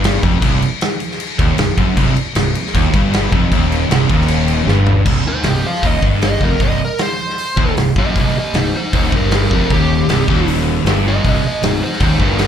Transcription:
Already playing: G1 G2
0.04 snare, crash
0.23 F1 F2, kick, crash
0.40 C1 C2, kick, crash
0.62 crash
0.81 snare, crash
1.00 crash
1.11 snare
1.20 crash
1.39 D#1 D#2, kick, crash
1.57 C1 C2, snare, crash
1.77 F#1 F#2, kick, crash
1.96 C1 C2, kick, crash
2.16 muted fingered electric bass stroke, muted distorted electric guitar stroke, muted overdriven electric guitar stroke, crash
2.35 C1 C2, snare, crash
2.55 crash
2.66 snare
2.74 D#1 D#2, kick, crash
2.93 G1 G2, kick, crash
3.14 snare, crash
3.32 F1 F2, kick, crash
3.52 D#1 D#2, kick, crash
3.72 crash
3.90 C1 C2, snare, crash
4.10 D#1 D#2, kick, crash
4.21 snare
4.28 crash
4.48 crash
4.67 G1 G2, snare
4.87 floor tom
5.05 C1 C2, kick, crash
5.25 D#4 C5, muted fingered electric bass stroke, muted overdriven electric guitar stroke, muted distorted electric guitar stroke
5.43 C1 C2, snare, open hi-hat
5.47 G4 D#5
5.66 C5 F5
5.74 snare
5.82 D#1 D#2 D#5, kick, open hi-hat
6.02 G1 G2, kick
6.22 D#5, snare, open hi-hat
6.40 F1 F2 A#4, kick
6.59 C1 C2 D#5, kick, open hi-hat
6.85 A#4
6.98 C5, snare, open hi-hat
7.30 snare
7.38 open hi-hat
7.56 D#1 D#2, kick
7.77 C1 C2, snare, open hi-hat
7.96 F#1 F#2 G4 D#5, kick
8.16 C1 C2 G4, kick, open hi-hat
8.20 D#5
8.35 G4 D#5, muted fingered electric bass stroke, muted distorted electric guitar stroke, muted overdriven electric guitar stroke
8.54 C1 C2, snare, open hi-hat
8.58 D#4 C5
8.76 D#4 C5
8.93 D#1 D#2 D#4 C5, kick, open hi-hat
9.12 G1 G2 G4, kick
9.16 A#4
9.31 G4, snare, open hi-hat
9.36 A#4
9.51 F1 F2 G4 A#4, kick
9.70 D#1 D#2 G4, kick, open hi-hat
10.08 C1 C2, snare, open hi-hat
10.28 D#1 D#2, kick
10.48 open hi-hat
10.59 snare
10.85 G1 G2, snare, open hi-hat
11.08 G4 D#5
11.24 C1 C2, kick, open hi-hat
11.28 G4 D#5
11.44 G4 D#5, muted distorted electric guitar stroke, muted overdriven electric guitar stroke, muted fingered electric bass stroke
11.63 C1 C2 D#4 C5, snare, open hi-hat
11.83 D#4 C5
11.93 snare
12.00 D#1 D#2 D#4, kick, open hi-hat
12.04 C5
12.20 G1 G2 G4, kick
12.24 A#4
12.38 G4 A#4, snare, open hi-hat

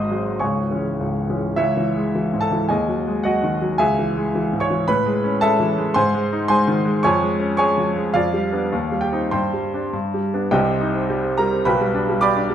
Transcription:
Already playing: G#1 G#2 D#5 C6 D#6
0.11 F#3 G#3 C4
0.39 C#1 C#2 C#5 G#5 C#6
0.71 E3 G#3 C#4
1.00 C#1 C#2
1.29 E3 G#3 C#4
1.56 C#2 E4 C#5 E5
1.77 E3
1.96 G#3
2.15 E3
2.34 G#2
2.41 A4 A5
2.52 E3
2.69 D#2 G#4 D#5 G#5
2.88 F#3
3.07 G#3
3.23 F#3 F#4 D#5 F#5
3.43 D#3
3.62 F#3
3.78 C#2 G#4 E5 G#5
3.99 E3
4.17 G#3
4.35 E3
4.53 G#2
4.60 C#5 C#6
4.70 E3
4.88 A2 B4 B5
5.06 G#3
5.24 C#4
5.41 G#3 A4 E5 A5
5.60 E3
5.78 G#3
5.94 G#2 C5 G#5 C6
6.14 G#3
6.33 D#4
6.48 G#3 C5 G#5 C6
6.67 D#3
6.85 G#3
7.03 F2 C#5 G#5 C#6
7.22 G#3
7.40 C#4
7.57 G#3 C#5 G#5 C#6
7.78 F3
7.96 G#3
8.14 F2 F4 D5 F5
8.33 G3
8.53 B3 D4
8.72 D#2
8.91 G3
9.01 G4 G5
9.12 C4 D#4
9.31 G2 C5 G5 C6
9.53 G3
9.74 C4 D4
9.93 G2
10.14 G3
10.34 B3 D4
10.51 C2 C3 G4 D#5 G5
10.66 C4
10.81 D#4
10.95 C4
11.10 G3
11.24 C4
11.38 G3 A#4 A#5
11.52 C4
11.65 B1 B2 B4 G5 B5
11.81 G3
11.94 D4
12.09 G3
12.21 G4 D5 B5 D6
12.37 D4
12.50 G3

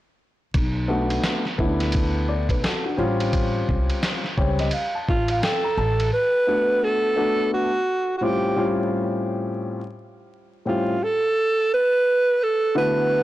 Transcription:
0.54 B1, kick, ride
0.88 A3 B3 D4 F#4
1.10 ride
1.24 snare, hi-hat pedal, ride
1.45 snare
1.58 D2 A3 B3 C#4 E4, kick
1.65 D4
1.80 snare, ride
1.92 kick, ride
2.29 B4 D5
2.49 B1 B4, kick, ride
2.64 F#4 A4, snare, hi-hat pedal, ride
2.85 D4 F#4
2.97 A1 G3 C4 C#4 F4
3.20 ride
3.33 kick, ride
3.69 C2, kick
3.90 ride
4.03 snare, hi-hat pedal, ride
4.24 snare
4.37 C#2 G3 C4 C#4 G4 C#5, kick
4.59 D#5, snare, ride
4.71 F5, ride
4.95 A5
5.09 A1 F4, kick
5.28 F5, ride
5.42 A4 G5, snare, hi-hat pedal, ride
5.64 A#5
5.77 A1 A5
6.00 ride
6.13 B4
6.47 A3 B3 D4 F#4
6.84 A4
7.16 A3 B3 D4 F#4
7.54 F#4
8.18 A2 G3 F#4
8.22 C4 C#4 F4 G4
8.56 A2 G3 C4 C#4 F4
10.65 A2 G3 C4 C#4 F4 G4
11.04 A4
11.74 B4
12.43 A4
12.75 D3 A3 B3 E4 F#4 B4

